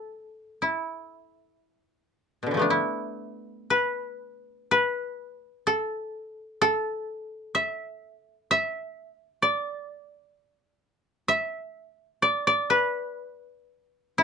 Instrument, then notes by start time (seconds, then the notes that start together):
koto
Already playing: A4
0.62 E4
2.43 B2 D3
2.51 E3 F3
2.57 A3 B3
2.62 D4
2.70 E4
3.70 B4
4.71 B4
5.67 A4
6.62 A4
7.55 E5
8.51 E5
9.42 D5
11.28 E5
12.22 D5
12.47 D5
12.70 B4
14.18 E4